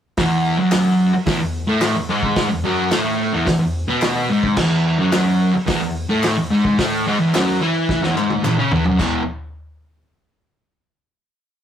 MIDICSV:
0, 0, Header, 1, 4, 480
1, 0, Start_track
1, 0, Key_signature, 4, "major"
1, 0, Tempo, 550459
1, 156, Time_signature, 4, 2, 24, 8
1, 10149, End_track
2, 0, Start_track
2, 0, Title_t, "Distorted electric guitar"
2, 0, Program_c, 0, 30
2, 156, Note_on_c, 0, 40, 91
2, 165, Note_on_c, 0, 52, 107
2, 504, Note_off_c, 0, 40, 0
2, 508, Note_on_c, 0, 42, 87
2, 511, Note_off_c, 0, 52, 0
2, 522, Note_on_c, 0, 54, 85
2, 982, Note_off_c, 0, 42, 0
2, 988, Note_off_c, 0, 54, 0
2, 1102, Note_on_c, 0, 40, 91
2, 1113, Note_on_c, 0, 52, 104
2, 1211, Note_off_c, 0, 40, 0
2, 1221, Note_on_c, 0, 40, 74
2, 1225, Note_off_c, 0, 52, 0
2, 1417, Note_off_c, 0, 40, 0
2, 1458, Note_on_c, 0, 45, 91
2, 1471, Note_on_c, 0, 57, 99
2, 1696, Note_off_c, 0, 45, 0
2, 1697, Note_on_c, 0, 40, 73
2, 1703, Note_off_c, 0, 57, 0
2, 1818, Note_off_c, 0, 40, 0
2, 1822, Note_on_c, 0, 44, 88
2, 1833, Note_on_c, 0, 56, 88
2, 2178, Note_off_c, 0, 44, 0
2, 2182, Note_on_c, 0, 40, 72
2, 2183, Note_off_c, 0, 56, 0
2, 2299, Note_off_c, 0, 40, 0
2, 2302, Note_on_c, 0, 42, 97
2, 2315, Note_on_c, 0, 54, 109
2, 2538, Note_off_c, 0, 42, 0
2, 2539, Note_on_c, 0, 45, 99
2, 2544, Note_off_c, 0, 54, 0
2, 2552, Note_on_c, 0, 57, 121
2, 2897, Note_off_c, 0, 45, 0
2, 2898, Note_on_c, 0, 40, 91
2, 2903, Note_off_c, 0, 57, 0
2, 2906, Note_on_c, 0, 52, 91
2, 3010, Note_off_c, 0, 40, 0
2, 3020, Note_off_c, 0, 52, 0
2, 3020, Note_on_c, 0, 40, 76
2, 3121, Note_off_c, 0, 40, 0
2, 3131, Note_on_c, 0, 40, 77
2, 3332, Note_off_c, 0, 40, 0
2, 3382, Note_on_c, 0, 47, 93
2, 3397, Note_on_c, 0, 59, 102
2, 3738, Note_off_c, 0, 47, 0
2, 3742, Note_on_c, 0, 44, 94
2, 3746, Note_off_c, 0, 59, 0
2, 3756, Note_on_c, 0, 56, 89
2, 3979, Note_off_c, 0, 44, 0
2, 3985, Note_on_c, 0, 40, 98
2, 3986, Note_off_c, 0, 56, 0
2, 3996, Note_on_c, 0, 52, 107
2, 4341, Note_off_c, 0, 40, 0
2, 4347, Note_off_c, 0, 52, 0
2, 4348, Note_on_c, 0, 42, 89
2, 4354, Note_on_c, 0, 54, 92
2, 4823, Note_off_c, 0, 42, 0
2, 4826, Note_off_c, 0, 54, 0
2, 4939, Note_on_c, 0, 40, 97
2, 4950, Note_on_c, 0, 52, 99
2, 5059, Note_off_c, 0, 40, 0
2, 5064, Note_off_c, 0, 52, 0
2, 5071, Note_on_c, 0, 40, 75
2, 5264, Note_off_c, 0, 40, 0
2, 5311, Note_on_c, 0, 45, 85
2, 5320, Note_on_c, 0, 57, 101
2, 5546, Note_off_c, 0, 45, 0
2, 5550, Note_off_c, 0, 57, 0
2, 5555, Note_on_c, 0, 40, 81
2, 5670, Note_off_c, 0, 40, 0
2, 5673, Note_on_c, 0, 44, 78
2, 5682, Note_on_c, 0, 56, 95
2, 5907, Note_off_c, 0, 44, 0
2, 5912, Note_off_c, 0, 56, 0
2, 5920, Note_on_c, 0, 45, 90
2, 5931, Note_on_c, 0, 57, 99
2, 6151, Note_off_c, 0, 45, 0
2, 6157, Note_off_c, 0, 57, 0
2, 6159, Note_on_c, 0, 44, 89
2, 6174, Note_on_c, 0, 56, 105
2, 6271, Note_off_c, 0, 44, 0
2, 6275, Note_on_c, 0, 40, 90
2, 6278, Note_off_c, 0, 56, 0
2, 6285, Note_on_c, 0, 52, 91
2, 6389, Note_off_c, 0, 40, 0
2, 6394, Note_off_c, 0, 52, 0
2, 6403, Note_on_c, 0, 42, 105
2, 6410, Note_on_c, 0, 54, 121
2, 6633, Note_off_c, 0, 42, 0
2, 6633, Note_on_c, 0, 52, 84
2, 6637, Note_off_c, 0, 54, 0
2, 6646, Note_on_c, 0, 64, 98
2, 6989, Note_off_c, 0, 52, 0
2, 6992, Note_on_c, 0, 40, 91
2, 6995, Note_off_c, 0, 64, 0
2, 7001, Note_on_c, 0, 52, 91
2, 7108, Note_off_c, 0, 40, 0
2, 7112, Note_off_c, 0, 52, 0
2, 7117, Note_on_c, 0, 44, 95
2, 7123, Note_on_c, 0, 56, 105
2, 7351, Note_off_c, 0, 44, 0
2, 7354, Note_off_c, 0, 56, 0
2, 7358, Note_on_c, 0, 40, 90
2, 7368, Note_on_c, 0, 52, 100
2, 7471, Note_off_c, 0, 40, 0
2, 7475, Note_on_c, 0, 49, 86
2, 7476, Note_off_c, 0, 52, 0
2, 7489, Note_on_c, 0, 61, 95
2, 7590, Note_off_c, 0, 49, 0
2, 7597, Note_off_c, 0, 61, 0
2, 7599, Note_on_c, 0, 40, 80
2, 7610, Note_on_c, 0, 52, 92
2, 7711, Note_off_c, 0, 40, 0
2, 7715, Note_on_c, 0, 42, 90
2, 7717, Note_off_c, 0, 52, 0
2, 7725, Note_on_c, 0, 54, 92
2, 7829, Note_off_c, 0, 42, 0
2, 7833, Note_on_c, 0, 40, 89
2, 7835, Note_off_c, 0, 54, 0
2, 7840, Note_on_c, 0, 47, 102
2, 7846, Note_on_c, 0, 52, 103
2, 8028, Note_off_c, 0, 40, 0
2, 8032, Note_off_c, 0, 47, 0
2, 8035, Note_off_c, 0, 52, 0
2, 10149, End_track
3, 0, Start_track
3, 0, Title_t, "Muted distorted electric guitar strokes"
3, 994, Note_on_c, 9, 29, 55
3, 1081, Note_off_c, 9, 29, 0
3, 4837, Note_on_c, 9, 29, 58
3, 4924, Note_off_c, 9, 29, 0
3, 10149, End_track
4, 0, Start_track
4, 0, Title_t, "Drums"
4, 150, Note_on_c, 9, 46, 60
4, 155, Note_on_c, 9, 36, 110
4, 155, Note_on_c, 9, 38, 111
4, 237, Note_off_c, 9, 46, 0
4, 242, Note_off_c, 9, 38, 0
4, 243, Note_off_c, 9, 36, 0
4, 622, Note_on_c, 9, 46, 65
4, 624, Note_on_c, 9, 39, 96
4, 626, Note_on_c, 9, 38, 114
4, 709, Note_off_c, 9, 46, 0
4, 712, Note_off_c, 9, 39, 0
4, 713, Note_off_c, 9, 38, 0
4, 1102, Note_on_c, 9, 46, 65
4, 1106, Note_on_c, 9, 36, 118
4, 1107, Note_on_c, 9, 38, 113
4, 1190, Note_off_c, 9, 46, 0
4, 1194, Note_off_c, 9, 36, 0
4, 1194, Note_off_c, 9, 38, 0
4, 1578, Note_on_c, 9, 46, 65
4, 1581, Note_on_c, 9, 39, 89
4, 1582, Note_on_c, 9, 38, 112
4, 1665, Note_off_c, 9, 46, 0
4, 1668, Note_off_c, 9, 39, 0
4, 1669, Note_off_c, 9, 38, 0
4, 1942, Note_on_c, 9, 36, 85
4, 2029, Note_off_c, 9, 36, 0
4, 2058, Note_on_c, 9, 46, 62
4, 2062, Note_on_c, 9, 38, 119
4, 2063, Note_on_c, 9, 36, 96
4, 2145, Note_off_c, 9, 46, 0
4, 2149, Note_off_c, 9, 38, 0
4, 2150, Note_off_c, 9, 36, 0
4, 2537, Note_on_c, 9, 46, 60
4, 2541, Note_on_c, 9, 38, 117
4, 2547, Note_on_c, 9, 39, 82
4, 2624, Note_off_c, 9, 46, 0
4, 2628, Note_off_c, 9, 38, 0
4, 2634, Note_off_c, 9, 39, 0
4, 3024, Note_on_c, 9, 46, 58
4, 3025, Note_on_c, 9, 36, 104
4, 3028, Note_on_c, 9, 38, 110
4, 3111, Note_off_c, 9, 46, 0
4, 3112, Note_off_c, 9, 36, 0
4, 3115, Note_off_c, 9, 38, 0
4, 3501, Note_on_c, 9, 39, 92
4, 3505, Note_on_c, 9, 46, 62
4, 3509, Note_on_c, 9, 38, 108
4, 3588, Note_off_c, 9, 39, 0
4, 3592, Note_off_c, 9, 46, 0
4, 3596, Note_off_c, 9, 38, 0
4, 3867, Note_on_c, 9, 36, 88
4, 3954, Note_off_c, 9, 36, 0
4, 3982, Note_on_c, 9, 49, 96
4, 3987, Note_on_c, 9, 36, 97
4, 3987, Note_on_c, 9, 38, 115
4, 4069, Note_off_c, 9, 49, 0
4, 4074, Note_off_c, 9, 36, 0
4, 4074, Note_off_c, 9, 38, 0
4, 4463, Note_on_c, 9, 46, 64
4, 4468, Note_on_c, 9, 38, 111
4, 4472, Note_on_c, 9, 39, 90
4, 4551, Note_off_c, 9, 46, 0
4, 4555, Note_off_c, 9, 38, 0
4, 4559, Note_off_c, 9, 39, 0
4, 4949, Note_on_c, 9, 46, 66
4, 4954, Note_on_c, 9, 36, 112
4, 4954, Note_on_c, 9, 38, 115
4, 5037, Note_off_c, 9, 46, 0
4, 5041, Note_off_c, 9, 36, 0
4, 5041, Note_off_c, 9, 38, 0
4, 5433, Note_on_c, 9, 39, 93
4, 5439, Note_on_c, 9, 46, 63
4, 5444, Note_on_c, 9, 38, 114
4, 5521, Note_off_c, 9, 39, 0
4, 5527, Note_off_c, 9, 46, 0
4, 5531, Note_off_c, 9, 38, 0
4, 5797, Note_on_c, 9, 36, 91
4, 5884, Note_off_c, 9, 36, 0
4, 5917, Note_on_c, 9, 46, 67
4, 5919, Note_on_c, 9, 36, 99
4, 5921, Note_on_c, 9, 38, 112
4, 6004, Note_off_c, 9, 46, 0
4, 6006, Note_off_c, 9, 36, 0
4, 6009, Note_off_c, 9, 38, 0
4, 6404, Note_on_c, 9, 39, 96
4, 6408, Note_on_c, 9, 46, 66
4, 6412, Note_on_c, 9, 38, 115
4, 6491, Note_off_c, 9, 39, 0
4, 6495, Note_off_c, 9, 46, 0
4, 6499, Note_off_c, 9, 38, 0
4, 6881, Note_on_c, 9, 36, 112
4, 6885, Note_on_c, 9, 38, 67
4, 6968, Note_off_c, 9, 36, 0
4, 6972, Note_off_c, 9, 38, 0
4, 7006, Note_on_c, 9, 38, 61
4, 7093, Note_off_c, 9, 38, 0
4, 7129, Note_on_c, 9, 39, 75
4, 7216, Note_off_c, 9, 39, 0
4, 7239, Note_on_c, 9, 48, 75
4, 7326, Note_off_c, 9, 48, 0
4, 7359, Note_on_c, 9, 47, 87
4, 7366, Note_on_c, 9, 39, 92
4, 7446, Note_off_c, 9, 47, 0
4, 7453, Note_off_c, 9, 39, 0
4, 7599, Note_on_c, 9, 43, 106
4, 7687, Note_off_c, 9, 43, 0
4, 7719, Note_on_c, 9, 43, 95
4, 7806, Note_off_c, 9, 43, 0
4, 7841, Note_on_c, 9, 49, 88
4, 7842, Note_on_c, 9, 36, 107
4, 7857, Note_on_c, 9, 39, 78
4, 7928, Note_off_c, 9, 49, 0
4, 7929, Note_off_c, 9, 36, 0
4, 7944, Note_off_c, 9, 39, 0
4, 10149, End_track
0, 0, End_of_file